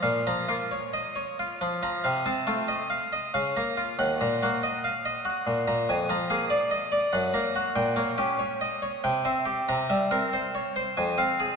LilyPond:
\new Staff \with { instrumentName = "Harpsichord" } { \time 3/4 \key bes \minor \tempo 4 = 93 << { \tuplet 3/2 { r8 bes''8 r8 } r2 | \tuplet 3/2 { r8 a''8 r8 } r4 \tuplet 3/2 { r8 bes''8 r8 } | \tuplet 3/2 { r8 bes''8 r8 } r2 | \tuplet 3/2 { r8 bes''8 r8 } r4 \tuplet 3/2 { r8 bes''8 r8 } |
\key c \phrygian g''8 r4. g''8 r8 | bes''8 r4. aes''8 r8 | } \\ { \tuplet 3/2 { <bes, f''>8 f8 <bes f'>8 des''8 ees''8 des''8 f'8 f8 <f bes''>8 } | \tuplet 3/2 { <c f''>8 c'8 <a f'>8 ees''8 f''8 ees''8 <des f''>8 bes8 f'8 } | \tuplet 3/2 { <ees, ges''>8 bes,8 <bes ges'>8 ees''8 f''8 ees''8 ges'8 bes,8 <bes, bes''>8 } | \tuplet 3/2 { <f, aes''>8 f8 <bes aes'>8 d''8 ees''8 d''8 <ges, ges''>8 bes8 ges'8 } |
\tuplet 3/2 { bes,8 <bes des''>8 <des' g'>8 des''8 ees''8 des''8 c8 <c' e''>8 g'8 } | \tuplet 3/2 { c8 <g e''>8 <c' bes'>8 c''8 des''8 c''8 f,8 <c' f''>8 aes'8 } | } >> }